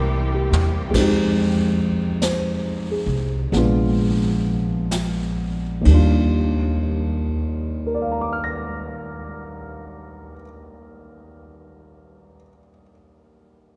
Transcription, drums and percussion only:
0.53 mid tom medium
0.94 brush sweep soft
0.94 kick medium
0.94 snare soft
0.94 ride medium
2.22 brush sweep soft
2.22 snare soft
2.22 hi-hat pedal soft
3.53 brush sweep soft
3.53 snare soft
4.91 brush sweep soft
4.91 snare soft
4.91 hi-hat pedal soft
5.85 kick soft
5.85 ride soft

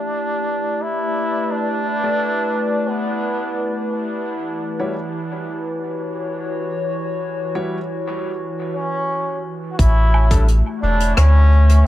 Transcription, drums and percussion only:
9.79 kick loud
9.79 closed hi-hat medium
10.14 low woodblock medium
10.31 kick loud
10.31 closed hi-hat medium
10.48 closed hi-hat medium
11.00 closed hi-hat medium
11.17 cross-stick loud
11.17 closed hi-hat medium
11.69 closed hi-hat medium

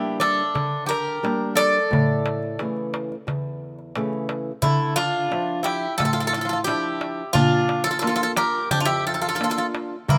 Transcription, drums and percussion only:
0.21 darbuka tek medium
0.38 darbuka tek soft
0.55 darbuka tek medium
0.55 darbuka dum medium
0.91 darbuka tek medium
1.08 darbuka tek soft
1.25 darbuka tek medium
1.59 darbuka tek medium
1.93 darbuka dum medium
2.09 darbuka tek soft
2.26 darbuka tek medium
2.42 darbuka tek soft
2.59 darbuka tek medium
2.77 darbuka tek soft
2.94 darbuka tek medium
3.12 darbuka tek soft
3.28 darbuka tek medium
3.28 darbuka dum medium
3.79 darbuka tek soft
3.95 darbuka tek medium
4.13 darbuka tek soft
4.29 darbuka tek medium
4.63 darbuka dum medium
4.97 darbuka tek medium
5.32 darbuka tek medium
5.66 darbuka tek medium
6.00 darbuka tek medium
6.00 darbuka dum medium
6.16 darbuka tek soft
6.33 darbuka tek medium
6.51 darbuka tek soft
6.68 darbuka tek medium
6.85 darbuka tek soft
7.01 darbuka tek medium
7.35 darbuka dum medium
7.69 darbuka tek medium
8.03 darbuka tek medium
8.36 darbuka tek medium
8.71 darbuka tek medium
8.71 darbuka dum medium
8.89 darbuka tek soft
9.23 darbuka tek soft
9.41 darbuka tek medium
9.58 darbuka tek soft
9.74 darbuka tek medium
10.09 darbuka dum loud

